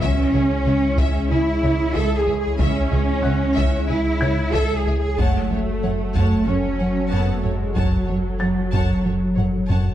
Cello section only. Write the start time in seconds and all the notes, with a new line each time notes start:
0.01 C#4
1.30 E4
1.95 A4
2.18 G#4
2.39 G#4
2.59 C#4
3.88 E4
4.53 A4
4.76 G#4
4.98 G#4
5.19 A3
6.47 C#4
7.12 B3
7.35 A3
7.56 G#3
7.77 F#3